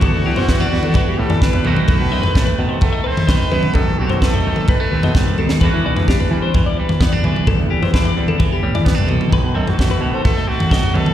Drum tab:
SD |----o-------o---|----o-------o---|----o-------o--o|----o-------o---|
T1 |----------------|----------------|--------------o-|----------------|
T2 |-------o---o--oo|-----------o--oo|-------o---o----|-----------o--oo|
FT |o--o-o--o--o-o--|o--o-o--o--o-o--|o--o-o--o--o-o--|o--o-o--o--o-o--|
BD |o---o---o---o---|o---o---o---o---|o---o---o---o---|o---o---o---o---|

SD |----o-------o---|----o-------o---|
T1 |----------------|----------------|
T2 |-------o---o--oo|-----------o--oo|
FT |o--o-o--o--o-o--|o--o-o--o--o-o--|
BD |o---o---o---o---|o---o---o---o---|